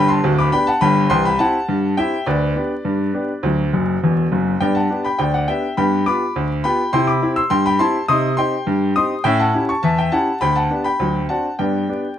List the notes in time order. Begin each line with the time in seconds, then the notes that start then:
Already playing: G1 G2
0.09 A5 C6
0.24 D1 D2
0.38 B5 D6
0.52 B3 D4 G4 G5 B5
0.67 F#5 A5
0.81 G1 G2 G5 B5
1.10 C2 E3 G5 C6
1.25 G5 B5
1.39 C4 E4 G4 F#5 A5
1.69 G2
1.97 C4 E4 G4 E5 G5
2.26 D2 B4 D5
2.56 B3 D4 G4
2.85 G2
3.14 B3 D4 G4
3.43 D2 F#3
3.73 F#1 F#2
4.03 E1 E2
4.32 F#1 F#2
4.60 G2 B3 D5 G5
4.75 F#5 A5
4.90 B3 D4 G4
5.05 G5 B5
5.19 D2 D5 G5
5.34 D5 F#5
5.48 B3 D4 G4 E5 G5
5.77 G2 B3 G5 B5
6.06 B3 F4 G4 B5 D6
6.36 D2
6.64 B3 F4 G4 G5 B5
6.93 C3 E4 G5 C6
7.07 B5 D6
7.22 C4 E4 G4
7.36 C6 E6
7.50 G2 G5 C6
7.66 G5 B5
7.79 C4 E4 G4 A5 C6
8.08 C3 D#4 C6 D#6
8.37 C4 D#4 G4 G5 C6
8.67 G2
8.96 C4 D#4 G4 C6 D#6
9.24 A2 C#4 E5 G5
9.39 F#5 A5
9.54 C#4 E4 G4
9.69 A5 C#6
9.83 E2 E5 A5
9.98 E5 G5
10.12 C#4 E4 G4 F#5 A5
10.41 D2 G5 B5
10.56 F#5 A5
10.70 B3 D4 G4
10.84 G5 B5
11.00 D2 F#3
11.29 C4 D4 F#4 F#5 A5
11.59 G2 B3 D5 G5
11.89 B3 D4 G4